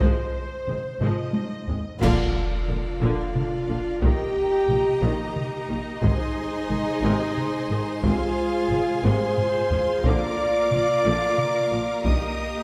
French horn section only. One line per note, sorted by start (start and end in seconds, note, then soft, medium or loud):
0.68 0.80 F3 medium
0.68 0.80 C4 medium
1.02 1.98 D#4 medium
1.67 1.79 F3 medium
1.67 1.79 C4 medium
2.01 3.98 F4 loud
4.02 5.01 G4 loud
5.03 5.36 D#4 medium
6.04 8.00 D#4 loud
8.03 9.02 F4 loud
9.04 10.02 C5 loud
10.04 12.05 D5 loud
12.04 12.63 D#5 loud